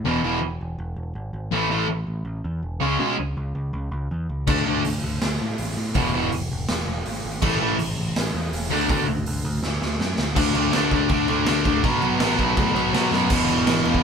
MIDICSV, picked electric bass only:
0, 0, Header, 1, 2, 480
1, 0, Start_track
1, 0, Tempo, 368098
1, 67, Time_signature, 4, 2, 24, 8
1, 18295, End_track
2, 0, Start_track
2, 0, Title_t, "Picked electric bass"
2, 0, Program_c, 0, 34
2, 56, Note_on_c, 0, 28, 93
2, 258, Note_off_c, 0, 28, 0
2, 307, Note_on_c, 0, 28, 82
2, 505, Note_off_c, 0, 28, 0
2, 546, Note_on_c, 0, 28, 85
2, 745, Note_off_c, 0, 28, 0
2, 793, Note_on_c, 0, 28, 87
2, 989, Note_off_c, 0, 28, 0
2, 1024, Note_on_c, 0, 28, 93
2, 1224, Note_off_c, 0, 28, 0
2, 1257, Note_on_c, 0, 28, 82
2, 1460, Note_off_c, 0, 28, 0
2, 1503, Note_on_c, 0, 32, 80
2, 1705, Note_off_c, 0, 32, 0
2, 1736, Note_on_c, 0, 32, 78
2, 1941, Note_off_c, 0, 32, 0
2, 1975, Note_on_c, 0, 33, 89
2, 2181, Note_off_c, 0, 33, 0
2, 2215, Note_on_c, 0, 33, 81
2, 2421, Note_off_c, 0, 33, 0
2, 2454, Note_on_c, 0, 33, 87
2, 2660, Note_off_c, 0, 33, 0
2, 2697, Note_on_c, 0, 33, 87
2, 2903, Note_off_c, 0, 33, 0
2, 2931, Note_on_c, 0, 33, 90
2, 3139, Note_off_c, 0, 33, 0
2, 3187, Note_on_c, 0, 40, 84
2, 3389, Note_off_c, 0, 40, 0
2, 3423, Note_on_c, 0, 28, 87
2, 3627, Note_off_c, 0, 28, 0
2, 3668, Note_on_c, 0, 37, 83
2, 3870, Note_off_c, 0, 37, 0
2, 3908, Note_on_c, 0, 47, 92
2, 4110, Note_off_c, 0, 47, 0
2, 4159, Note_on_c, 0, 37, 88
2, 4357, Note_off_c, 0, 37, 0
2, 4395, Note_on_c, 0, 37, 85
2, 4595, Note_off_c, 0, 37, 0
2, 4628, Note_on_c, 0, 37, 89
2, 4831, Note_off_c, 0, 37, 0
2, 4866, Note_on_c, 0, 37, 93
2, 5070, Note_off_c, 0, 37, 0
2, 5104, Note_on_c, 0, 37, 86
2, 5309, Note_off_c, 0, 37, 0
2, 5362, Note_on_c, 0, 40, 85
2, 5560, Note_off_c, 0, 40, 0
2, 5599, Note_on_c, 0, 37, 78
2, 5798, Note_off_c, 0, 37, 0
2, 5837, Note_on_c, 0, 38, 92
2, 6037, Note_off_c, 0, 38, 0
2, 6086, Note_on_c, 0, 38, 80
2, 6282, Note_off_c, 0, 38, 0
2, 6321, Note_on_c, 0, 38, 90
2, 6519, Note_off_c, 0, 38, 0
2, 6563, Note_on_c, 0, 38, 92
2, 6760, Note_off_c, 0, 38, 0
2, 6815, Note_on_c, 0, 38, 96
2, 7008, Note_off_c, 0, 38, 0
2, 7057, Note_on_c, 0, 45, 79
2, 7249, Note_off_c, 0, 45, 0
2, 7293, Note_on_c, 0, 33, 83
2, 7487, Note_off_c, 0, 33, 0
2, 7523, Note_on_c, 0, 45, 83
2, 7720, Note_off_c, 0, 45, 0
2, 7760, Note_on_c, 0, 28, 91
2, 7959, Note_off_c, 0, 28, 0
2, 8010, Note_on_c, 0, 28, 83
2, 8205, Note_off_c, 0, 28, 0
2, 8248, Note_on_c, 0, 28, 88
2, 8444, Note_off_c, 0, 28, 0
2, 8495, Note_on_c, 0, 28, 93
2, 8688, Note_off_c, 0, 28, 0
2, 8729, Note_on_c, 0, 28, 95
2, 8924, Note_off_c, 0, 28, 0
2, 8966, Note_on_c, 0, 28, 86
2, 9162, Note_off_c, 0, 28, 0
2, 9212, Note_on_c, 0, 32, 88
2, 9406, Note_off_c, 0, 32, 0
2, 9454, Note_on_c, 0, 32, 88
2, 9647, Note_off_c, 0, 32, 0
2, 9680, Note_on_c, 0, 33, 91
2, 9878, Note_off_c, 0, 33, 0
2, 9923, Note_on_c, 0, 33, 86
2, 10120, Note_off_c, 0, 33, 0
2, 10158, Note_on_c, 0, 33, 86
2, 10357, Note_off_c, 0, 33, 0
2, 10404, Note_on_c, 0, 33, 92
2, 10601, Note_off_c, 0, 33, 0
2, 10647, Note_on_c, 0, 33, 97
2, 10842, Note_off_c, 0, 33, 0
2, 10881, Note_on_c, 0, 40, 85
2, 11079, Note_off_c, 0, 40, 0
2, 11120, Note_on_c, 0, 28, 93
2, 11318, Note_off_c, 0, 28, 0
2, 11355, Note_on_c, 0, 38, 85
2, 11555, Note_off_c, 0, 38, 0
2, 11603, Note_on_c, 0, 47, 93
2, 11799, Note_off_c, 0, 47, 0
2, 11846, Note_on_c, 0, 38, 90
2, 12041, Note_off_c, 0, 38, 0
2, 12091, Note_on_c, 0, 38, 92
2, 12284, Note_off_c, 0, 38, 0
2, 12316, Note_on_c, 0, 38, 98
2, 12515, Note_off_c, 0, 38, 0
2, 12559, Note_on_c, 0, 38, 101
2, 12757, Note_off_c, 0, 38, 0
2, 12799, Note_on_c, 0, 38, 85
2, 12997, Note_off_c, 0, 38, 0
2, 13031, Note_on_c, 0, 42, 90
2, 13232, Note_off_c, 0, 42, 0
2, 13273, Note_on_c, 0, 38, 84
2, 13473, Note_off_c, 0, 38, 0
2, 13516, Note_on_c, 0, 38, 85
2, 13732, Note_off_c, 0, 38, 0
2, 13748, Note_on_c, 0, 38, 84
2, 13967, Note_off_c, 0, 38, 0
2, 13988, Note_on_c, 0, 38, 83
2, 14207, Note_off_c, 0, 38, 0
2, 14234, Note_on_c, 0, 38, 93
2, 14450, Note_off_c, 0, 38, 0
2, 14470, Note_on_c, 0, 38, 101
2, 14902, Note_off_c, 0, 38, 0
2, 14937, Note_on_c, 0, 38, 86
2, 15160, Note_off_c, 0, 38, 0
2, 15202, Note_on_c, 0, 38, 82
2, 15436, Note_on_c, 0, 35, 96
2, 15455, Note_off_c, 0, 38, 0
2, 15864, Note_off_c, 0, 35, 0
2, 15906, Note_on_c, 0, 33, 93
2, 16124, Note_off_c, 0, 33, 0
2, 16155, Note_on_c, 0, 35, 99
2, 16369, Note_off_c, 0, 35, 0
2, 16398, Note_on_c, 0, 45, 101
2, 16610, Note_off_c, 0, 45, 0
2, 16620, Note_on_c, 0, 35, 84
2, 16839, Note_off_c, 0, 35, 0
2, 16859, Note_on_c, 0, 47, 86
2, 17079, Note_off_c, 0, 47, 0
2, 17103, Note_on_c, 0, 42, 88
2, 17352, Note_on_c, 0, 28, 98
2, 17372, Note_off_c, 0, 42, 0
2, 17576, Note_off_c, 0, 28, 0
2, 17584, Note_on_c, 0, 28, 96
2, 17816, Note_off_c, 0, 28, 0
2, 17827, Note_on_c, 0, 32, 97
2, 18057, Note_off_c, 0, 32, 0
2, 18069, Note_on_c, 0, 28, 92
2, 18293, Note_off_c, 0, 28, 0
2, 18295, End_track
0, 0, End_of_file